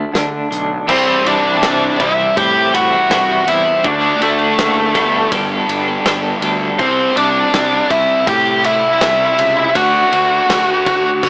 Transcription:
Already playing: D3 A3
0.14 D3 D4, snare, closed hi-hat
0.51 B1 D3, closed hi-hat
0.87 C2 C3 E3 G3 C4 E4 C5, kick, crash
1.25 C2 E3 G3 C4 D4 E4 D5, ride
1.42 G3 C4 E4
1.61 C2 C3 E3 G3 C4 E4, snare, ride
2.00 C2 E4 E5, kick, ride
2.17 G3 C4 E4
2.36 A2 E3 G3 C4 E4 G4 G5, kick, ride
2.54 G3 C4 E4
2.73 E3 G3 C4 E4 F#4 F#5, ride
2.91 G3 C4 E4
3.09 C2 C3 E3 G3 C4 E4, snare, ride
3.46 E2 E3 G3 C4 E4 E5, ride
3.65 G3 C4 E4
3.83 D2 D3 A3 D4 F#4 D5, kick, ride
4.19 D2 D3 A3 D4 F#4 A4, ride
4.40 A3 D4 F#4
4.57 F#1 D3 A3 D4 F#4, snare, ride
4.94 G1 G2 D3 G3 B3 D4 A4, kick, ride
5.13 B3 D4 A4
5.32 G1 G3 B3 D4 A4, kick, ride
5.51 B3 D4 A4
5.67 G1 G3 B3 D4 A4, ride
5.88 B3 D4 A4
6.05 G1 G3 B3 D4 A4, snare, ride
6.41 D2 G3 B3 D4 A4, ride
6.61 B3 D4 A4
6.78 C2 C3 G3 C4 C5, kick, ride
7.16 C2 D4 D5, ride
7.53 C2, snare, ride
7.90 C2 E4 E5, kick, ride
8.27 A2 G4 G5, kick, ride
8.64 E4 E5, ride
9.01 C2, snare, ride
9.38 C#2, ride
9.74 D2 D3 A3 D4 F#4 F#5, kick, ride
10.12 D2, ride
10.49 D2, snare, ride
10.86 kick, ride
11.23 kick, crash

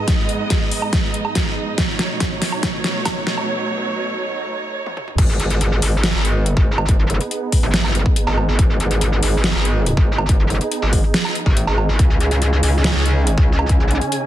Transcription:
Already playing: G#2 G#3 B3 D#4 D#5
0.08 kick, snare, closed hi-hat
0.29 closed hi-hat
0.50 kick, snare, closed hi-hat
0.72 open hi-hat
0.82 low woodblock
0.93 kick, snare, closed hi-hat
1.14 closed hi-hat
1.25 low woodblock
1.35 kick, snare, closed hi-hat
1.78 B2 F#3 A3 C#5, kick, snare, closed hi-hat
1.99 snare, closed hi-hat
2.20 kick, snare, closed hi-hat
2.42 snare, open hi-hat
2.52 low woodblock
2.63 kick, snare, closed hi-hat
2.84 snare, closed hi-hat
3.05 kick, snare, closed hi-hat, low woodblock
3.27 snare
3.38 low woodblock
4.87 high tom
4.97 mid tom
5.08 mid tom
5.18 G#1 B3 D#4 G#4, kick, closed hi-hat, crash
5.40 G#1, closed hi-hat
5.50 closed hi-hat
5.61 closed hi-hat
5.82 G#1, open hi-hat
6.04 snare, closed hi-hat
6.14 G#1
6.25 closed hi-hat
6.46 closed hi-hat
6.57 G#1, kick
6.78 low woodblock
6.89 kick, closed hi-hat
6.99 F#1
7.10 closed hi-hat
7.21 closed hi-hat
7.31 closed hi-hat
7.52 kick, open hi-hat
7.63 A1
7.74 snare, closed hi-hat
7.84 low woodblock
7.95 closed hi-hat
8.06 kick
8.16 closed hi-hat
8.27 G#1, low woodblock
8.38 low woodblock
8.59 G#1, kick, closed hi-hat
8.80 G#1, closed hi-hat
8.91 closed hi-hat
9.01 closed hi-hat
9.23 G#1, open hi-hat
9.44 snare, closed hi-hat
9.55 G#1
9.65 closed hi-hat
9.86 closed hi-hat
9.97 G#1, kick
10.18 low woodblock
10.29 kick, closed hi-hat
10.40 F#1
10.50 closed hi-hat
10.61 closed hi-hat
10.72 closed hi-hat
10.82 G#1
10.93 kick, open hi-hat
11.14 snare, closed hi-hat
11.25 low woodblock
11.35 closed hi-hat
11.46 A1, kick
11.57 closed hi-hat
11.67 G#1, low woodblock
11.78 low woodblock
11.99 C#2 C#3 C#4 G#5, kick, closed hi-hat
12.20 C#2, closed hi-hat
12.31 closed hi-hat
12.42 closed hi-hat
12.63 C#2, open hi-hat
12.84 snare, closed hi-hat
12.95 C#2
13.06 closed hi-hat
13.27 closed hi-hat
13.38 C#2, kick
13.59 low woodblock
13.69 kick, closed hi-hat
13.80 B1
13.91 closed hi-hat
14.01 closed hi-hat
14.12 closed hi-hat

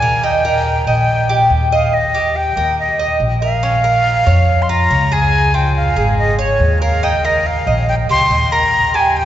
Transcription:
Already playing: D#2 G#5
0.02 A#4
0.23 D#4 G5
0.45 A#4
0.87 A#1 D#5 G5
1.29 G4
1.50 D#2
1.72 D#5 F5
1.94 D#5
2.15 G4
2.36 G5
2.57 D#2 A#4
2.79 D#5
2.99 D#5
3.20 A#1
3.42 A#4 F5
3.63 C#4
3.84 A#4
4.27 F2 C#5
4.62 C6
4.69 F4 A#5
4.90 C#2 C#5
5.12 G#4 G#5
5.54 F4 G5
5.76 F5
5.96 G#1 G#4
6.19 D#5
6.39 C#5
6.60 D#2
6.82 A#4 F5
7.03 D#4 G5
7.25 A#4 D#5
7.47 F5
7.67 A#1 D#5
7.89 G5
8.09 C#2 G4 C6
8.30 D#2 D#5
8.52 A#4 A#5
8.94 G4 G#5
9.17 G5

